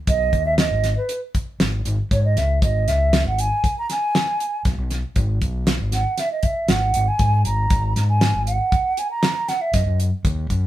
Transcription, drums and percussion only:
0.07 kick medium
0.07 closed hi-hat medium
0.33 kick medium
0.33 closed hi-hat soft
0.58 snare loud
0.58 closed hi-hat medium
0.84 snare soft
0.84 closed hi-hat medium
1.09 closed hi-hat medium
1.35 kick medium
1.35 closed hi-hat medium
1.60 snare loud
1.60 closed hi-hat medium
1.85 closed hi-hat medium
2.11 kick medium
2.11 closed hi-hat medium
2.37 snare soft
2.37 closed hi-hat medium
2.62 kick loud
2.62 closed hi-hat medium
2.88 snare soft
2.88 closed hi-hat medium
3.13 snare loud
3.13 closed hi-hat medium
3.39 closed hi-hat medium
3.64 kick medium
3.64 closed hi-hat medium
3.90 snare soft
3.90 closed hi-hat medium
4.15 snare loud
4.15 closed hi-hat medium
4.40 closed hi-hat medium
4.65 kick medium
4.65 snare soft
4.65 closed hi-hat medium
4.91 snare soft
4.91 closed hi-hat medium
5.16 kick medium
5.16 closed hi-hat medium
5.42 kick medium
5.42 closed hi-hat medium
5.67 snare loud
5.67 closed hi-hat medium
5.92 snare soft
5.92 closed hi-hat medium
6.18 snare soft
6.18 closed hi-hat medium
6.43 kick medium
6.43 closed hi-hat medium
6.68 snare loud
6.68 closed hi-hat medium
6.94 closed hi-hat medium
7.19 kick medium
7.19 closed hi-hat medium
7.45 closed hi-hat medium
7.70 kick loud
7.70 closed hi-hat medium
7.96 snare soft
7.96 closed hi-hat medium
8.21 snare loud
8.21 closed hi-hat medium
8.47 closed hi-hat medium
8.72 kick loud
8.72 closed hi-hat medium
8.97 closed hi-hat medium
9.23 snare loud
9.23 closed hi-hat medium
9.48 snare soft
9.48 closed hi-hat medium
9.74 kick medium
9.74 snare soft
9.74 closed hi-hat medium
10.00 closed hi-hat medium
10.25 kick loud
10.25 closed hi-hat medium
10.50 kick medium
10.50 closed hi-hat medium

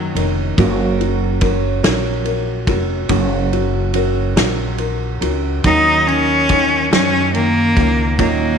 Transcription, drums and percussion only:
0.16 ride medium
0.58 kick loud
0.58 ride medium
1.01 ride soft
1.41 kick medium
1.41 ride medium
1.84 snare loud
1.84 ride medium
2.25 ride soft
2.67 kick loud
2.67 ride medium
3.09 kick loud
3.09 ride medium
3.53 ride soft
3.94 ride medium
4.37 snare loud
4.37 ride medium
4.78 ride soft
5.22 ride medium
5.64 kick loud
5.64 ride medium
6.08 ride soft
6.49 kick loud
6.49 ride medium
6.93 snare loud
6.93 ride medium
7.34 ride soft
7.77 kick loud
7.77 ride medium
8.19 kick loud
8.19 ride medium

